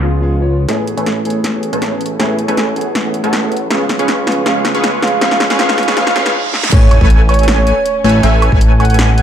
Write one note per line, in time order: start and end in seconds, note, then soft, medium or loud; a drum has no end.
0.00 0.67 C#2 medium
0.00 0.66 C#3 medium
0.00 0.19 F3 medium
0.00 0.20 G#3 medium
0.00 0.66 B3 medium
0.00 0.20 B3 medium
0.00 0.20 C#4 medium
0.00 0.66 F4 medium
0.00 0.62 F4 medium
0.00 0.64 G#4 medium
0.04 0.20 G#4 medium
0.21 0.35 F3 medium
0.21 0.35 G#3 medium
0.21 0.36 B3 medium
0.21 0.36 C#4 medium
0.21 0.36 G#4 medium
0.40 0.66 F3 medium
0.40 0.66 G#3 medium
0.40 0.66 B3 medium
0.40 0.67 C#4 medium
0.40 0.67 C#5 medium
0.68 0.95 A1 medium
0.68 0.95 E3 medium
0.68 0.95 A3 medium
0.68 3.67 A3 medium
0.68 0.95 A3 medium
0.68 0.95 B3 medium
0.68 3.67 C#4 medium
0.68 0.95 C#4 medium
0.68 0.95 G#4 loud
0.68 0.95 A4 medium
0.68 0.95 B4 medium
0.68 0.95 C#5 medium
0.68 0.89 C#5 loud
0.68 0.95 G#5 medium
0.68 snare soft
0.68 closed hi-hat medium
0.68 riser medium
0.87 closed hi-hat medium
0.96 1.71 A1 loud
0.96 1.05 E3 medium
0.96 1.05 A3 medium
0.96 1.71 A3 medium
0.96 1.06 B3 medium
0.96 1.06 C#4 medium
0.96 1.06 G#4 medium
0.96 1.71 A4 medium
0.96 1.71 B4 medium
0.96 1.71 C#5 medium
0.96 1.71 G#5 loud
0.96 closed hi-hat medium
1.06 snare soft
1.06 closed hi-hat medium
1.24 1.39 E3 medium
1.24 1.39 A3 medium
1.24 1.39 B3 medium
1.24 1.40 C#4 medium
1.24 1.40 G#4 medium
1.24 1.46 C#5 medium
1.24 closed hi-hat soft
1.30 closed hi-hat medium
1.44 snare soft
1.44 closed hi-hat medium
1.53 1.89 E3 medium
1.53 1.89 A3 medium
1.53 1.89 B3 medium
1.53 1.90 C#4 medium
1.53 1.90 G#4 medium
1.53 2.12 C#5 loud
1.63 closed hi-hat medium
1.73 2.18 A1 medium
1.73 2.17 A3 medium
1.73 2.17 A4 medium
1.73 2.17 B4 medium
1.73 2.17 C#5 medium
1.73 2.17 A5 medium
1.73 closed hi-hat medium
1.82 snare medium
1.82 closed hi-hat medium
1.91 2.00 E3 medium
1.91 2.00 A3 medium
1.91 2.00 B3 medium
1.91 2.00 C#4 medium
1.91 2.01 G#4 medium
2.01 closed hi-hat soft
2.06 closed hi-hat medium
2.19 2.46 A1 loud
2.19 2.46 E3 medium
2.19 2.46 A3 medium
2.19 2.46 B3 medium
2.19 2.46 C#4 medium
2.19 2.47 G#4 loud
2.19 2.46 A4 medium
2.19 2.46 B4 medium
2.19 2.46 C#5 medium
2.19 2.40 E5 loud
2.19 2.46 G#5 medium
2.19 snare medium
2.19 closed hi-hat medium
2.39 closed hi-hat medium
2.47 3.22 A1 loud
2.47 2.56 E3 medium
2.47 2.56 A3 medium
2.47 3.22 A3 medium
2.47 2.57 B3 medium
2.47 2.57 C#4 medium
2.47 2.57 G#4 medium
2.47 3.22 A4 medium
2.47 3.22 B4 medium
2.47 3.22 C#5 medium
2.47 3.22 G#5 loud
2.47 closed hi-hat medium
2.57 snare medium
2.57 closed hi-hat medium
2.75 2.90 E3 medium
2.75 2.90 A3 medium
2.75 2.90 B3 medium
2.75 2.91 C#4 medium
2.75 2.91 G#4 medium
2.75 2.97 F#5 loud
2.75 closed hi-hat soft
2.81 closed hi-hat medium
2.95 snare medium
2.95 closed hi-hat medium
3.04 3.40 E3 medium
3.04 3.40 A3 medium
3.04 3.40 B3 medium
3.04 3.41 C#4 medium
3.04 3.41 G#4 medium
3.04 3.70 F#5 loud
3.14 closed hi-hat medium
3.24 3.69 A1 loud
3.24 3.68 A3 medium
3.24 3.68 A4 medium
3.24 3.68 B4 medium
3.24 3.68 C#5 medium
3.24 3.68 A5 medium
3.24 closed hi-hat medium
3.33 snare medium
3.33 closed hi-hat medium
3.42 3.50 E3 medium
3.42 3.51 A3 medium
3.42 3.51 B3 medium
3.42 3.51 C#4 medium
3.42 3.51 G#4 medium
3.52 closed hi-hat soft
3.57 closed hi-hat medium
3.69 3.97 C#2 medium
3.69 6.69 C#3 medium
3.69 3.96 F3 medium
3.69 3.97 G#3 medium
3.69 6.69 B3 medium
3.69 3.97 B3 medium
3.69 3.97 C#4 medium
3.69 6.69 F4 medium
3.69 3.97 G#4 medium
3.69 3.97 G#4 loud
3.69 3.97 B4 medium
3.69 3.97 F5 medium
3.69 3.91 F5 medium
3.69 3.97 C#6 medium
3.69 snare medium
3.69 closed hi-hat medium
3.89 snare medium
3.89 closed hi-hat medium
3.98 4.44 C#2 medium
3.98 4.07 F3 medium
3.98 4.07 G#3 medium
3.98 4.08 B3 medium
3.98 4.44 C#4 medium
3.98 4.08 C#4 medium
3.98 4.44 G#4 medium
3.98 4.08 G#4 medium
3.98 4.44 B4 medium
3.98 4.44 F5 medium
3.98 4.44 C#6 loud
3.98 closed hi-hat medium
4.08 snare medium
4.08 closed hi-hat medium
4.26 4.41 F3 medium
4.26 4.41 G#3 medium
4.26 4.41 B3 medium
4.26 4.42 C#4 medium
4.26 4.42 G#4 medium
4.26 4.45 F5 medium
4.26 snare medium
4.26 closed hi-hat soft
4.32 closed hi-hat medium
4.45 4.73 C#2 medium
4.45 4.72 F3 medium
4.45 4.72 G#3 medium
4.45 4.72 B3 medium
4.45 4.72 C#4 medium
4.45 4.73 C#4 medium
4.45 4.72 G#4 medium
4.45 4.73 G#4 medium
4.45 4.72 B4 medium
4.45 4.72 F5 medium
4.45 4.67 F5 medium
4.45 4.72 C#6 medium
4.45 snare medium
4.45 closed hi-hat medium
4.65 snare medium
4.65 closed hi-hat medium
4.74 5.20 C#2 medium
4.74 4.83 F3 medium
4.74 4.83 G#3 medium
4.74 4.83 B3 medium
4.74 5.20 C#4 medium
4.74 4.83 C#4 medium
4.74 5.20 G#4 medium
4.74 4.84 G#4 medium
4.74 5.20 B4 medium
4.74 5.20 F5 medium
4.74 5.20 C#6 medium
4.74 closed hi-hat medium
4.84 snare medium
4.84 closed hi-hat medium
5.02 5.16 F3 medium
5.02 5.17 G#3 medium
5.02 5.17 B3 medium
5.02 5.17 C#4 medium
5.02 5.17 G#4 medium
5.02 5.20 F5 medium
5.02 snare medium
5.02 closed hi-hat soft
5.07 closed hi-hat medium
5.20 5.48 C#2 loud
5.20 5.47 F3 medium
5.20 5.48 G#3 medium
5.20 5.48 B3 medium
5.20 5.48 C#4 medium
5.20 5.48 G#4 medium
5.20 5.48 G#4 loud
5.20 5.48 B4 medium
5.20 5.48 F5 medium
5.20 5.42 F5 loud
5.20 5.48 C#6 medium
5.20 snare medium
5.20 closed hi-hat medium
5.31 snare medium
5.40 snare medium
5.40 closed hi-hat medium
5.49 5.57 C#2 loud
5.49 5.57 F3 medium
5.49 5.57 G#3 medium
5.49 5.58 B3 medium
5.49 5.58 C#4 medium
5.49 5.58 G#4 medium
5.49 5.58 B4 medium
5.49 5.58 F5 medium
5.49 5.58 C#6 loud
5.49 snare medium
5.49 closed hi-hat medium
5.58 5.86 C#2 medium
5.58 5.85 F3 loud
5.58 5.85 G#3 medium
5.58 5.86 B3 medium
5.58 5.86 C#4 medium
5.58 5.86 G#4 medium
5.58 5.86 G#4 loud
5.58 5.86 B4 medium
5.58 5.86 F5 medium
5.58 5.80 F5 loud
5.58 5.86 C#6 medium
5.58 snare medium
5.58 closed hi-hat medium
5.69 snare medium
5.78 snare loud
5.78 closed hi-hat soft
5.83 closed hi-hat medium
5.87 5.95 C#2 loud
5.87 5.94 F3 medium
5.87 5.95 G#3 medium
5.87 5.95 B3 medium
5.87 5.95 C#4 medium
5.87 5.96 C#4 medium
5.87 5.95 G#4 medium
5.87 5.96 G#4 medium
5.87 5.95 B4 medium
5.87 5.95 F5 medium
5.87 5.95 C#6 loud
5.87 snare medium
5.96 6.14 C#2 medium
5.96 6.13 F3 loud
5.96 6.14 G#3 medium
5.96 6.14 B3 medium
5.96 6.14 C#4 medium
5.96 6.15 C#4 medium
5.96 6.14 G#4 medium
5.96 6.15 G#4 loud
5.96 6.14 B4 medium
5.96 6.14 F5 medium
5.96 6.14 F5 loud
5.96 6.14 C#6 medium
5.96 snare loud
5.96 closed hi-hat medium
5.96 reverse cymbal medium
6.07 snare medium
6.15 6.33 C#2 medium
6.15 6.33 F3 loud
6.15 6.33 G#3 medium
6.15 6.33 B3 medium
6.15 6.33 C#4 medium
6.15 6.33 G#4 medium
6.15 6.34 G#4 loud
6.15 6.33 B4 medium
6.15 6.33 F5 medium
6.15 6.33 F5 loud
6.15 6.33 C#6 medium
6.15 snare loud
6.15 closed hi-hat medium
6.26 snare medium
6.26 closed hi-hat medium
6.53 snare medium
6.63 snare medium
6.72 6.99 A1 loud
6.72 6.99 A3 medium
6.72 9.22 A3 medium
6.72 9.22 C#4 loud
6.72 6.99 A4 medium
6.72 6.99 B4 medium
6.72 6.99 C#5 medium
6.72 6.93 C#5 loud
6.72 6.99 G#5 medium
6.72 kick loud
6.72 closed hi-hat medium
6.72 crash loud
6.72 sub drop medium
6.91 closed hi-hat medium
6.91 high woodblock medium
7.01 7.73 A1 loud
7.01 7.75 A3 medium
7.01 7.75 A4 medium
7.01 7.75 B4 medium
7.01 7.75 C#5 medium
7.01 7.75 G#5 loud
7.01 kick medium
7.10 closed hi-hat medium
7.29 7.50 C#5 loud
7.29 closed hi-hat soft
7.29 high woodblock medium
7.34 closed hi-hat medium
7.39 closed hi-hat medium
7.43 closed hi-hat medium
7.48 snare loud
7.48 closed hi-hat medium
7.58 8.16 C#5 loud
7.67 closed hi-hat medium
7.86 closed hi-hat medium
8.04 8.21 A1 loud
8.04 8.21 A3 medium
8.04 8.21 A4 medium
8.04 8.21 B4 medium
8.04 8.21 C#5 medium
8.04 8.21 G#5 medium
8.04 open hi-hat medium
8.09 closed hi-hat medium
8.23 8.50 A1 loud
8.23 8.50 A3 medium
8.23 8.50 A4 medium
8.23 8.50 B4 medium
8.23 8.50 C#5 medium
8.23 8.44 E5 loud
8.23 8.50 G#5 medium
8.23 closed hi-hat medium
8.42 closed hi-hat medium
8.42 high woodblock medium
8.52 9.22 A1 loud
8.52 9.22 A3 loud
8.52 9.22 A4 medium
8.52 9.22 B4 medium
8.52 9.22 C#5 medium
8.52 9.22 G#5 loud
8.52 kick medium
8.61 closed hi-hat medium
8.80 9.01 F#5 loud
8.80 closed hi-hat soft
8.80 high woodblock medium
8.85 closed hi-hat medium
8.90 closed hi-hat soft
8.94 closed hi-hat medium
8.99 snare loud
8.99 closed hi-hat medium
9.09 9.22 F#5 loud
9.18 closed hi-hat medium